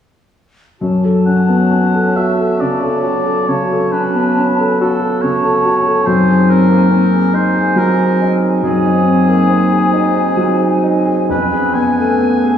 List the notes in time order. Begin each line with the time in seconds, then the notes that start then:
0.80 F#2 C#4 F#4 A5
1.04 A4
1.26 C#4 F#5
1.48 B3
1.71 C#4
1.94 A4
2.16 F#4 E5
2.38 A4
2.60 C#3 D5
2.82 A4
3.03 F#4
3.25 A4
3.47 C#3 C#4 F#4 C#5 A5
3.72 A4
3.92 C#4 B4
4.14 B3
4.37 C#4
4.59 A4
4.81 C#4 F#4 A4 A5
5.01 A4
5.22 C#3 C#5
5.44 A4
5.65 F#4
5.87 A4
6.07 F#2 C4 D#4 C5 G#5
6.30 G#4
6.49 C4 A#4
6.70 A#3
6.90 C4
7.13 G#4
7.33 C4 D#4 C5 G#5
7.54 G#4
7.76 F#3 A#4
7.98 G#4
8.21 D#4
8.42 G#4
8.63 F#2 C4 D#4 G#4 G#5
8.85 D#4
9.06 C4
9.28 A#3
9.49 C4
9.72 G#4
9.93 D#4
10.15 G#4
10.37 F#3
10.59 G#4
10.83 D#4
11.06 G#4
11.28 F2 B3 C#4 B4 G#5
11.52 G#4
11.74 B3 G#5
11.98 A3
12.21 B3
12.43 G#4